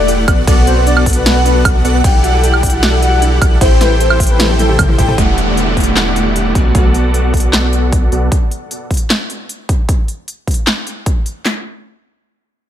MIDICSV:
0, 0, Header, 1, 9, 480
1, 0, Start_track
1, 0, Key_signature, 1, "minor"
1, 0, Tempo, 392157
1, 581, Time_signature, 4, 2, 24, 8
1, 15541, End_track
2, 0, Start_track
2, 0, Title_t, "Digital synth lead"
2, 0, Program_c, 0, 84
2, 0, Note_on_c, 0, 78, 82
2, 312, Note_off_c, 0, 78, 0
2, 340, Note_on_c, 0, 78, 103
2, 545, Note_off_c, 0, 78, 0
2, 579, Note_on_c, 0, 78, 84
2, 2232, Note_off_c, 0, 78, 0
2, 2259, Note_on_c, 0, 78, 107
2, 2465, Note_off_c, 0, 78, 0
2, 2501, Note_on_c, 0, 78, 84
2, 4153, Note_off_c, 0, 78, 0
2, 4181, Note_on_c, 0, 78, 107
2, 4385, Note_off_c, 0, 78, 0
2, 4421, Note_on_c, 0, 79, 83
2, 6073, Note_off_c, 0, 79, 0
2, 6101, Note_on_c, 0, 79, 106
2, 6306, Note_off_c, 0, 79, 0
2, 15541, End_track
3, 0, Start_track
3, 0, Title_t, "Soft synth lead"
3, 0, Program_c, 1, 80
3, 580, Note_on_c, 1, 74, 101
3, 749, Note_off_c, 1, 74, 0
3, 822, Note_on_c, 1, 72, 96
3, 990, Note_off_c, 1, 72, 0
3, 1062, Note_on_c, 1, 74, 93
3, 1312, Note_off_c, 1, 74, 0
3, 1425, Note_on_c, 1, 71, 93
3, 1675, Note_off_c, 1, 71, 0
3, 1782, Note_on_c, 1, 71, 100
3, 2032, Note_off_c, 1, 71, 0
3, 2501, Note_on_c, 1, 79, 104
3, 2670, Note_off_c, 1, 79, 0
3, 2744, Note_on_c, 1, 78, 95
3, 2911, Note_off_c, 1, 78, 0
3, 2984, Note_on_c, 1, 79, 98
3, 3344, Note_on_c, 1, 78, 95
3, 3362, Note_off_c, 1, 79, 0
3, 3594, Note_off_c, 1, 78, 0
3, 3699, Note_on_c, 1, 78, 98
3, 3951, Note_off_c, 1, 78, 0
3, 4420, Note_on_c, 1, 72, 107
3, 4659, Note_on_c, 1, 71, 98
3, 4677, Note_off_c, 1, 72, 0
3, 4828, Note_off_c, 1, 71, 0
3, 4900, Note_on_c, 1, 72, 94
3, 5151, Note_off_c, 1, 72, 0
3, 5261, Note_on_c, 1, 71, 91
3, 5513, Note_off_c, 1, 71, 0
3, 5620, Note_on_c, 1, 69, 99
3, 5871, Note_off_c, 1, 69, 0
3, 15541, End_track
4, 0, Start_track
4, 0, Title_t, "Supersaw synth"
4, 0, Program_c, 2, 81
4, 0, Note_on_c, 2, 57, 77
4, 0, Note_on_c, 2, 64, 70
4, 0, Note_on_c, 2, 67, 73
4, 0, Note_on_c, 2, 74, 68
4, 0, Note_on_c, 2, 78, 88
4, 311, Note_off_c, 2, 57, 0
4, 312, Note_off_c, 2, 64, 0
4, 312, Note_off_c, 2, 67, 0
4, 312, Note_off_c, 2, 74, 0
4, 312, Note_off_c, 2, 78, 0
4, 341, Note_on_c, 2, 59, 100
4, 341, Note_on_c, 2, 66, 95
4, 341, Note_on_c, 2, 69, 92
4, 341, Note_on_c, 2, 74, 94
4, 341, Note_on_c, 2, 78, 107
4, 545, Note_off_c, 2, 66, 0
4, 546, Note_off_c, 2, 59, 0
4, 546, Note_off_c, 2, 69, 0
4, 546, Note_off_c, 2, 74, 0
4, 546, Note_off_c, 2, 78, 0
4, 581, Note_on_c, 2, 59, 79
4, 581, Note_on_c, 2, 66, 72
4, 581, Note_on_c, 2, 69, 71
4, 581, Note_on_c, 2, 74, 69
4, 581, Note_on_c, 2, 78, 79
4, 2232, Note_off_c, 2, 74, 0
4, 2233, Note_off_c, 2, 59, 0
4, 2233, Note_off_c, 2, 66, 0
4, 2233, Note_off_c, 2, 69, 0
4, 2233, Note_off_c, 2, 78, 0
4, 2260, Note_on_c, 2, 69, 88
4, 2260, Note_on_c, 2, 74, 87
4, 2260, Note_on_c, 2, 78, 112
4, 2261, Note_on_c, 2, 59, 105
4, 2261, Note_on_c, 2, 66, 95
4, 2465, Note_off_c, 2, 69, 0
4, 2465, Note_off_c, 2, 74, 0
4, 2465, Note_off_c, 2, 78, 0
4, 2466, Note_off_c, 2, 59, 0
4, 2466, Note_off_c, 2, 66, 0
4, 2500, Note_on_c, 2, 74, 70
4, 2501, Note_on_c, 2, 64, 75
4, 2501, Note_on_c, 2, 67, 68
4, 2501, Note_on_c, 2, 69, 70
4, 2501, Note_on_c, 2, 78, 84
4, 4152, Note_off_c, 2, 74, 0
4, 4153, Note_off_c, 2, 64, 0
4, 4153, Note_off_c, 2, 67, 0
4, 4153, Note_off_c, 2, 69, 0
4, 4153, Note_off_c, 2, 78, 0
4, 4180, Note_on_c, 2, 67, 95
4, 4180, Note_on_c, 2, 69, 93
4, 4180, Note_on_c, 2, 74, 90
4, 4180, Note_on_c, 2, 78, 107
4, 4181, Note_on_c, 2, 64, 104
4, 4385, Note_off_c, 2, 64, 0
4, 4385, Note_off_c, 2, 67, 0
4, 4385, Note_off_c, 2, 69, 0
4, 4385, Note_off_c, 2, 74, 0
4, 4385, Note_off_c, 2, 78, 0
4, 4420, Note_on_c, 2, 64, 77
4, 4420, Note_on_c, 2, 67, 69
4, 4420, Note_on_c, 2, 69, 67
4, 4420, Note_on_c, 2, 72, 71
4, 4421, Note_on_c, 2, 79, 83
4, 6072, Note_off_c, 2, 67, 0
4, 6072, Note_off_c, 2, 69, 0
4, 6072, Note_off_c, 2, 72, 0
4, 6073, Note_off_c, 2, 64, 0
4, 6073, Note_off_c, 2, 79, 0
4, 6102, Note_on_c, 2, 64, 98
4, 6102, Note_on_c, 2, 67, 91
4, 6102, Note_on_c, 2, 69, 88
4, 6102, Note_on_c, 2, 72, 93
4, 6102, Note_on_c, 2, 79, 113
4, 6306, Note_off_c, 2, 64, 0
4, 6306, Note_off_c, 2, 67, 0
4, 6306, Note_off_c, 2, 69, 0
4, 6306, Note_off_c, 2, 72, 0
4, 6306, Note_off_c, 2, 79, 0
4, 6340, Note_on_c, 2, 64, 66
4, 6340, Note_on_c, 2, 74, 68
4, 6341, Note_on_c, 2, 57, 73
4, 6341, Note_on_c, 2, 67, 65
4, 6341, Note_on_c, 2, 78, 82
4, 7992, Note_off_c, 2, 64, 0
4, 7992, Note_off_c, 2, 74, 0
4, 7993, Note_off_c, 2, 57, 0
4, 7993, Note_off_c, 2, 67, 0
4, 7993, Note_off_c, 2, 78, 0
4, 8021, Note_on_c, 2, 59, 96
4, 8021, Note_on_c, 2, 78, 107
4, 8022, Note_on_c, 2, 66, 88
4, 8022, Note_on_c, 2, 69, 90
4, 8022, Note_on_c, 2, 74, 85
4, 8226, Note_off_c, 2, 59, 0
4, 8226, Note_off_c, 2, 66, 0
4, 8226, Note_off_c, 2, 69, 0
4, 8226, Note_off_c, 2, 74, 0
4, 8226, Note_off_c, 2, 78, 0
4, 8261, Note_on_c, 2, 59, 68
4, 8261, Note_on_c, 2, 74, 67
4, 8262, Note_on_c, 2, 66, 63
4, 8262, Note_on_c, 2, 69, 66
4, 8262, Note_on_c, 2, 78, 80
4, 9913, Note_off_c, 2, 59, 0
4, 9913, Note_off_c, 2, 66, 0
4, 9913, Note_off_c, 2, 69, 0
4, 9913, Note_off_c, 2, 74, 0
4, 9913, Note_off_c, 2, 78, 0
4, 9942, Note_on_c, 2, 69, 83
4, 9942, Note_on_c, 2, 74, 85
4, 9943, Note_on_c, 2, 59, 97
4, 9943, Note_on_c, 2, 66, 82
4, 9943, Note_on_c, 2, 78, 108
4, 10146, Note_off_c, 2, 59, 0
4, 10146, Note_off_c, 2, 66, 0
4, 10146, Note_off_c, 2, 69, 0
4, 10146, Note_off_c, 2, 74, 0
4, 10146, Note_off_c, 2, 78, 0
4, 15541, End_track
5, 0, Start_track
5, 0, Title_t, "Synth arpeggio sound"
5, 0, Program_c, 3, 84
5, 99, Note_on_c, 3, 69, 86
5, 176, Note_off_c, 3, 69, 0
5, 222, Note_on_c, 3, 67, 77
5, 332, Note_off_c, 3, 67, 0
5, 339, Note_on_c, 3, 62, 72
5, 416, Note_off_c, 3, 62, 0
5, 462, Note_on_c, 3, 66, 81
5, 572, Note_off_c, 3, 66, 0
5, 581, Note_on_c, 3, 69, 90
5, 695, Note_off_c, 3, 69, 0
5, 703, Note_on_c, 3, 74, 79
5, 776, Note_off_c, 3, 74, 0
5, 820, Note_on_c, 3, 74, 80
5, 896, Note_off_c, 3, 74, 0
5, 943, Note_on_c, 3, 71, 79
5, 1052, Note_off_c, 3, 71, 0
5, 1060, Note_on_c, 3, 62, 85
5, 1136, Note_off_c, 3, 62, 0
5, 1183, Note_on_c, 3, 66, 81
5, 1292, Note_off_c, 3, 66, 0
5, 1300, Note_on_c, 3, 69, 81
5, 1414, Note_off_c, 3, 69, 0
5, 1422, Note_on_c, 3, 74, 74
5, 1495, Note_off_c, 3, 74, 0
5, 1541, Note_on_c, 3, 74, 87
5, 1617, Note_off_c, 3, 74, 0
5, 1663, Note_on_c, 3, 71, 77
5, 1772, Note_off_c, 3, 71, 0
5, 1780, Note_on_c, 3, 62, 75
5, 1857, Note_off_c, 3, 62, 0
5, 1903, Note_on_c, 3, 66, 81
5, 2012, Note_off_c, 3, 66, 0
5, 2022, Note_on_c, 3, 69, 86
5, 2135, Note_off_c, 3, 69, 0
5, 2144, Note_on_c, 3, 74, 80
5, 2217, Note_off_c, 3, 74, 0
5, 2260, Note_on_c, 3, 74, 76
5, 2336, Note_off_c, 3, 74, 0
5, 2382, Note_on_c, 3, 71, 77
5, 2492, Note_off_c, 3, 71, 0
5, 2499, Note_on_c, 3, 62, 88
5, 2576, Note_off_c, 3, 62, 0
5, 2623, Note_on_c, 3, 64, 79
5, 2733, Note_off_c, 3, 64, 0
5, 2740, Note_on_c, 3, 66, 78
5, 2854, Note_off_c, 3, 66, 0
5, 2864, Note_on_c, 3, 69, 82
5, 2936, Note_off_c, 3, 69, 0
5, 2979, Note_on_c, 3, 69, 89
5, 3056, Note_off_c, 3, 69, 0
5, 3102, Note_on_c, 3, 67, 81
5, 3212, Note_off_c, 3, 67, 0
5, 3220, Note_on_c, 3, 62, 80
5, 3296, Note_off_c, 3, 62, 0
5, 3343, Note_on_c, 3, 64, 75
5, 3453, Note_off_c, 3, 64, 0
5, 3462, Note_on_c, 3, 66, 89
5, 3575, Note_off_c, 3, 66, 0
5, 3583, Note_on_c, 3, 69, 78
5, 3656, Note_off_c, 3, 69, 0
5, 3701, Note_on_c, 3, 69, 82
5, 3777, Note_off_c, 3, 69, 0
5, 3823, Note_on_c, 3, 67, 79
5, 3932, Note_off_c, 3, 67, 0
5, 3940, Note_on_c, 3, 62, 81
5, 4016, Note_off_c, 3, 62, 0
5, 4062, Note_on_c, 3, 64, 76
5, 4172, Note_off_c, 3, 64, 0
5, 4181, Note_on_c, 3, 66, 75
5, 4295, Note_off_c, 3, 66, 0
5, 4301, Note_on_c, 3, 69, 81
5, 4375, Note_off_c, 3, 69, 0
5, 4421, Note_on_c, 3, 76, 89
5, 4497, Note_off_c, 3, 76, 0
5, 4543, Note_on_c, 3, 72, 81
5, 4652, Note_off_c, 3, 72, 0
5, 4659, Note_on_c, 3, 64, 76
5, 4736, Note_off_c, 3, 64, 0
5, 4782, Note_on_c, 3, 67, 77
5, 4892, Note_off_c, 3, 67, 0
5, 4900, Note_on_c, 3, 69, 85
5, 5014, Note_off_c, 3, 69, 0
5, 5022, Note_on_c, 3, 76, 79
5, 5095, Note_off_c, 3, 76, 0
5, 5139, Note_on_c, 3, 76, 83
5, 5216, Note_off_c, 3, 76, 0
5, 5261, Note_on_c, 3, 72, 80
5, 5371, Note_off_c, 3, 72, 0
5, 5378, Note_on_c, 3, 64, 85
5, 5455, Note_off_c, 3, 64, 0
5, 5502, Note_on_c, 3, 67, 80
5, 5612, Note_off_c, 3, 67, 0
5, 5621, Note_on_c, 3, 64, 75
5, 5735, Note_off_c, 3, 64, 0
5, 5744, Note_on_c, 3, 67, 104
5, 5817, Note_off_c, 3, 67, 0
5, 5861, Note_on_c, 3, 69, 78
5, 5975, Note_off_c, 3, 69, 0
5, 5984, Note_on_c, 3, 64, 108
5, 6056, Note_off_c, 3, 64, 0
5, 6103, Note_on_c, 3, 72, 77
5, 6178, Note_off_c, 3, 72, 0
5, 6223, Note_on_c, 3, 69, 110
5, 6296, Note_off_c, 3, 69, 0
5, 15541, End_track
6, 0, Start_track
6, 0, Title_t, "Clean electric guitar"
6, 0, Program_c, 4, 27
6, 6315, Note_on_c, 4, 50, 85
6, 6328, Note_on_c, 4, 55, 79
6, 6340, Note_on_c, 4, 57, 76
6, 6353, Note_on_c, 4, 59, 75
6, 6364, Note_on_c, 4, 78, 88
6, 7961, Note_off_c, 4, 50, 0
6, 7967, Note_off_c, 4, 55, 0
6, 7973, Note_off_c, 4, 57, 0
6, 7980, Note_off_c, 4, 59, 0
6, 7985, Note_off_c, 4, 78, 0
6, 8008, Note_on_c, 4, 50, 71
6, 8014, Note_on_c, 4, 54, 66
6, 8021, Note_on_c, 4, 57, 69
6, 8026, Note_on_c, 4, 59, 64
6, 8032, Note_on_c, 4, 66, 81
6, 8494, Note_off_c, 4, 50, 0
6, 8497, Note_off_c, 4, 54, 0
6, 8501, Note_off_c, 4, 57, 0
6, 8504, Note_off_c, 4, 59, 0
6, 8506, Note_off_c, 4, 66, 0
6, 15541, End_track
7, 0, Start_track
7, 0, Title_t, "Sub bass"
7, 0, Program_c, 5, 38
7, 0, Note_on_c, 5, 28, 100
7, 341, Note_on_c, 5, 35, 96
7, 359, Note_off_c, 5, 28, 0
7, 558, Note_off_c, 5, 35, 0
7, 582, Note_on_c, 5, 35, 98
7, 2238, Note_off_c, 5, 35, 0
7, 2262, Note_on_c, 5, 35, 96
7, 2478, Note_off_c, 5, 35, 0
7, 2501, Note_on_c, 5, 35, 98
7, 4158, Note_off_c, 5, 35, 0
7, 4181, Note_on_c, 5, 35, 96
7, 4397, Note_off_c, 5, 35, 0
7, 4421, Note_on_c, 5, 33, 101
7, 6077, Note_off_c, 5, 33, 0
7, 6102, Note_on_c, 5, 33, 97
7, 6318, Note_off_c, 5, 33, 0
7, 6341, Note_on_c, 5, 28, 94
7, 7998, Note_off_c, 5, 28, 0
7, 8022, Note_on_c, 5, 35, 90
7, 8238, Note_off_c, 5, 35, 0
7, 8261, Note_on_c, 5, 35, 88
7, 9917, Note_off_c, 5, 35, 0
7, 9942, Note_on_c, 5, 35, 95
7, 10158, Note_off_c, 5, 35, 0
7, 15541, End_track
8, 0, Start_track
8, 0, Title_t, "Downlifter"
8, 0, Program_c, 6, 103
8, 6341, Note_on_c, 6, 60, 66
8, 10181, Note_off_c, 6, 60, 0
8, 15541, End_track
9, 0, Start_track
9, 0, Title_t, "Drums"
9, 102, Note_on_c, 9, 42, 82
9, 224, Note_off_c, 9, 42, 0
9, 341, Note_on_c, 9, 36, 109
9, 341, Note_on_c, 9, 42, 69
9, 341, Note_on_c, 9, 76, 68
9, 463, Note_off_c, 9, 36, 0
9, 464, Note_off_c, 9, 42, 0
9, 464, Note_off_c, 9, 76, 0
9, 581, Note_on_c, 9, 36, 113
9, 582, Note_on_c, 9, 42, 81
9, 582, Note_on_c, 9, 49, 50
9, 703, Note_off_c, 9, 36, 0
9, 705, Note_off_c, 9, 42, 0
9, 705, Note_off_c, 9, 49, 0
9, 822, Note_on_c, 9, 42, 63
9, 944, Note_off_c, 9, 42, 0
9, 1061, Note_on_c, 9, 42, 78
9, 1184, Note_off_c, 9, 42, 0
9, 1184, Note_on_c, 9, 76, 83
9, 1301, Note_on_c, 9, 36, 64
9, 1302, Note_on_c, 9, 46, 99
9, 1306, Note_off_c, 9, 76, 0
9, 1343, Note_on_c, 9, 42, 68
9, 1382, Note_off_c, 9, 42, 0
9, 1382, Note_on_c, 9, 42, 86
9, 1423, Note_off_c, 9, 36, 0
9, 1424, Note_off_c, 9, 46, 0
9, 1505, Note_off_c, 9, 42, 0
9, 1543, Note_on_c, 9, 38, 114
9, 1543, Note_on_c, 9, 42, 85
9, 1543, Note_on_c, 9, 49, 43
9, 1665, Note_off_c, 9, 38, 0
9, 1665, Note_off_c, 9, 42, 0
9, 1665, Note_off_c, 9, 49, 0
9, 1782, Note_on_c, 9, 42, 69
9, 1905, Note_off_c, 9, 42, 0
9, 2021, Note_on_c, 9, 36, 99
9, 2022, Note_on_c, 9, 42, 88
9, 2022, Note_on_c, 9, 76, 89
9, 2143, Note_off_c, 9, 36, 0
9, 2144, Note_off_c, 9, 42, 0
9, 2144, Note_off_c, 9, 76, 0
9, 2262, Note_on_c, 9, 42, 72
9, 2384, Note_off_c, 9, 42, 0
9, 2501, Note_on_c, 9, 36, 109
9, 2501, Note_on_c, 9, 42, 84
9, 2501, Note_on_c, 9, 49, 49
9, 2623, Note_off_c, 9, 36, 0
9, 2624, Note_off_c, 9, 42, 0
9, 2624, Note_off_c, 9, 49, 0
9, 2741, Note_on_c, 9, 42, 71
9, 2864, Note_off_c, 9, 42, 0
9, 2981, Note_on_c, 9, 42, 85
9, 3104, Note_off_c, 9, 42, 0
9, 3104, Note_on_c, 9, 76, 81
9, 3220, Note_on_c, 9, 36, 65
9, 3221, Note_on_c, 9, 46, 99
9, 3227, Note_off_c, 9, 76, 0
9, 3262, Note_on_c, 9, 42, 74
9, 3302, Note_off_c, 9, 42, 0
9, 3302, Note_on_c, 9, 42, 84
9, 3343, Note_off_c, 9, 36, 0
9, 3343, Note_off_c, 9, 46, 0
9, 3424, Note_off_c, 9, 42, 0
9, 3462, Note_on_c, 9, 38, 118
9, 3462, Note_on_c, 9, 42, 86
9, 3462, Note_on_c, 9, 49, 38
9, 3584, Note_off_c, 9, 38, 0
9, 3584, Note_off_c, 9, 42, 0
9, 3584, Note_off_c, 9, 49, 0
9, 3702, Note_on_c, 9, 42, 73
9, 3825, Note_off_c, 9, 42, 0
9, 3941, Note_on_c, 9, 42, 92
9, 4064, Note_off_c, 9, 42, 0
9, 4181, Note_on_c, 9, 36, 107
9, 4182, Note_on_c, 9, 42, 74
9, 4182, Note_on_c, 9, 76, 64
9, 4303, Note_off_c, 9, 36, 0
9, 4304, Note_off_c, 9, 42, 0
9, 4304, Note_off_c, 9, 76, 0
9, 4421, Note_on_c, 9, 36, 112
9, 4422, Note_on_c, 9, 42, 91
9, 4422, Note_on_c, 9, 49, 47
9, 4543, Note_off_c, 9, 36, 0
9, 4544, Note_off_c, 9, 42, 0
9, 4544, Note_off_c, 9, 49, 0
9, 4661, Note_on_c, 9, 38, 59
9, 4661, Note_on_c, 9, 42, 70
9, 4784, Note_off_c, 9, 38, 0
9, 4784, Note_off_c, 9, 42, 0
9, 4902, Note_on_c, 9, 42, 85
9, 5024, Note_off_c, 9, 42, 0
9, 5024, Note_on_c, 9, 76, 82
9, 5141, Note_on_c, 9, 36, 63
9, 5142, Note_on_c, 9, 46, 103
9, 5146, Note_off_c, 9, 76, 0
9, 5183, Note_on_c, 9, 42, 75
9, 5221, Note_off_c, 9, 42, 0
9, 5221, Note_on_c, 9, 42, 88
9, 5263, Note_off_c, 9, 36, 0
9, 5264, Note_off_c, 9, 46, 0
9, 5344, Note_off_c, 9, 42, 0
9, 5382, Note_on_c, 9, 38, 121
9, 5382, Note_on_c, 9, 42, 82
9, 5382, Note_on_c, 9, 48, 60
9, 5382, Note_on_c, 9, 49, 41
9, 5503, Note_off_c, 9, 48, 0
9, 5503, Note_on_c, 9, 48, 60
9, 5504, Note_off_c, 9, 38, 0
9, 5504, Note_off_c, 9, 42, 0
9, 5504, Note_off_c, 9, 49, 0
9, 5621, Note_off_c, 9, 48, 0
9, 5621, Note_on_c, 9, 42, 70
9, 5621, Note_on_c, 9, 48, 73
9, 5743, Note_on_c, 9, 47, 69
9, 5744, Note_off_c, 9, 42, 0
9, 5744, Note_off_c, 9, 48, 0
9, 5861, Note_on_c, 9, 36, 94
9, 5862, Note_off_c, 9, 47, 0
9, 5862, Note_on_c, 9, 42, 93
9, 5862, Note_on_c, 9, 47, 93
9, 5862, Note_on_c, 9, 76, 86
9, 5984, Note_off_c, 9, 36, 0
9, 5984, Note_off_c, 9, 42, 0
9, 5984, Note_off_c, 9, 47, 0
9, 5984, Note_off_c, 9, 76, 0
9, 5984, Note_on_c, 9, 47, 79
9, 6102, Note_on_c, 9, 36, 61
9, 6103, Note_on_c, 9, 42, 71
9, 6103, Note_on_c, 9, 45, 98
9, 6107, Note_off_c, 9, 47, 0
9, 6224, Note_off_c, 9, 36, 0
9, 6225, Note_off_c, 9, 42, 0
9, 6225, Note_off_c, 9, 45, 0
9, 6225, Note_on_c, 9, 45, 94
9, 6341, Note_on_c, 9, 36, 106
9, 6342, Note_on_c, 9, 42, 78
9, 6348, Note_off_c, 9, 45, 0
9, 6464, Note_off_c, 9, 36, 0
9, 6465, Note_off_c, 9, 42, 0
9, 6582, Note_on_c, 9, 42, 64
9, 6705, Note_off_c, 9, 42, 0
9, 6822, Note_on_c, 9, 42, 73
9, 6944, Note_off_c, 9, 42, 0
9, 7061, Note_on_c, 9, 36, 58
9, 7062, Note_on_c, 9, 42, 48
9, 7102, Note_off_c, 9, 42, 0
9, 7102, Note_on_c, 9, 42, 65
9, 7142, Note_off_c, 9, 42, 0
9, 7142, Note_on_c, 9, 42, 77
9, 7184, Note_off_c, 9, 36, 0
9, 7264, Note_off_c, 9, 42, 0
9, 7302, Note_on_c, 9, 38, 114
9, 7302, Note_on_c, 9, 39, 94
9, 7302, Note_on_c, 9, 42, 73
9, 7425, Note_off_c, 9, 38, 0
9, 7425, Note_off_c, 9, 39, 0
9, 7425, Note_off_c, 9, 42, 0
9, 7542, Note_on_c, 9, 42, 64
9, 7664, Note_off_c, 9, 42, 0
9, 7782, Note_on_c, 9, 42, 81
9, 7904, Note_off_c, 9, 42, 0
9, 8021, Note_on_c, 9, 36, 100
9, 8021, Note_on_c, 9, 42, 65
9, 8143, Note_off_c, 9, 36, 0
9, 8143, Note_off_c, 9, 42, 0
9, 8260, Note_on_c, 9, 42, 76
9, 8261, Note_on_c, 9, 36, 108
9, 8382, Note_off_c, 9, 42, 0
9, 8383, Note_off_c, 9, 36, 0
9, 8500, Note_on_c, 9, 42, 62
9, 8623, Note_off_c, 9, 42, 0
9, 8741, Note_on_c, 9, 42, 72
9, 8863, Note_off_c, 9, 42, 0
9, 8981, Note_on_c, 9, 36, 56
9, 8981, Note_on_c, 9, 42, 46
9, 9021, Note_off_c, 9, 42, 0
9, 9021, Note_on_c, 9, 42, 59
9, 9060, Note_off_c, 9, 42, 0
9, 9060, Note_on_c, 9, 42, 77
9, 9103, Note_off_c, 9, 36, 0
9, 9182, Note_off_c, 9, 42, 0
9, 9221, Note_on_c, 9, 38, 113
9, 9221, Note_on_c, 9, 39, 87
9, 9221, Note_on_c, 9, 42, 74
9, 9343, Note_off_c, 9, 38, 0
9, 9343, Note_off_c, 9, 39, 0
9, 9343, Note_off_c, 9, 42, 0
9, 9460, Note_on_c, 9, 42, 62
9, 9582, Note_off_c, 9, 42, 0
9, 9700, Note_on_c, 9, 36, 98
9, 9700, Note_on_c, 9, 42, 81
9, 9822, Note_off_c, 9, 42, 0
9, 9823, Note_off_c, 9, 36, 0
9, 9940, Note_on_c, 9, 42, 58
9, 10063, Note_off_c, 9, 42, 0
9, 10181, Note_on_c, 9, 36, 109
9, 10181, Note_on_c, 9, 42, 73
9, 10303, Note_off_c, 9, 36, 0
9, 10303, Note_off_c, 9, 42, 0
9, 10422, Note_on_c, 9, 42, 57
9, 10544, Note_off_c, 9, 42, 0
9, 10661, Note_on_c, 9, 42, 72
9, 10783, Note_off_c, 9, 42, 0
9, 10901, Note_on_c, 9, 36, 63
9, 10901, Note_on_c, 9, 42, 44
9, 10942, Note_off_c, 9, 42, 0
9, 10942, Note_on_c, 9, 42, 57
9, 10981, Note_off_c, 9, 42, 0
9, 10981, Note_on_c, 9, 42, 73
9, 11023, Note_off_c, 9, 36, 0
9, 11103, Note_off_c, 9, 42, 0
9, 11141, Note_on_c, 9, 38, 114
9, 11141, Note_on_c, 9, 39, 83
9, 11141, Note_on_c, 9, 42, 68
9, 11263, Note_off_c, 9, 38, 0
9, 11263, Note_off_c, 9, 39, 0
9, 11263, Note_off_c, 9, 42, 0
9, 11381, Note_on_c, 9, 42, 61
9, 11503, Note_off_c, 9, 42, 0
9, 11620, Note_on_c, 9, 42, 75
9, 11743, Note_off_c, 9, 42, 0
9, 11861, Note_on_c, 9, 36, 104
9, 11862, Note_on_c, 9, 42, 60
9, 11984, Note_off_c, 9, 36, 0
9, 11984, Note_off_c, 9, 42, 0
9, 12101, Note_on_c, 9, 36, 102
9, 12102, Note_on_c, 9, 42, 70
9, 12224, Note_off_c, 9, 36, 0
9, 12225, Note_off_c, 9, 42, 0
9, 12342, Note_on_c, 9, 42, 53
9, 12465, Note_off_c, 9, 42, 0
9, 12582, Note_on_c, 9, 42, 69
9, 12704, Note_off_c, 9, 42, 0
9, 12821, Note_on_c, 9, 36, 58
9, 12822, Note_on_c, 9, 42, 43
9, 12863, Note_off_c, 9, 42, 0
9, 12863, Note_on_c, 9, 42, 56
9, 12902, Note_off_c, 9, 42, 0
9, 12902, Note_on_c, 9, 42, 70
9, 12944, Note_off_c, 9, 36, 0
9, 13024, Note_off_c, 9, 42, 0
9, 13062, Note_on_c, 9, 38, 110
9, 13062, Note_on_c, 9, 39, 84
9, 13062, Note_on_c, 9, 42, 67
9, 13184, Note_off_c, 9, 38, 0
9, 13184, Note_off_c, 9, 39, 0
9, 13184, Note_off_c, 9, 42, 0
9, 13302, Note_on_c, 9, 42, 57
9, 13425, Note_off_c, 9, 42, 0
9, 13541, Note_on_c, 9, 36, 97
9, 13541, Note_on_c, 9, 42, 70
9, 13663, Note_off_c, 9, 42, 0
9, 13664, Note_off_c, 9, 36, 0
9, 13781, Note_on_c, 9, 42, 55
9, 13904, Note_off_c, 9, 42, 0
9, 14022, Note_on_c, 9, 38, 91
9, 14022, Note_on_c, 9, 39, 72
9, 14144, Note_off_c, 9, 38, 0
9, 14144, Note_off_c, 9, 39, 0
9, 15541, End_track
0, 0, End_of_file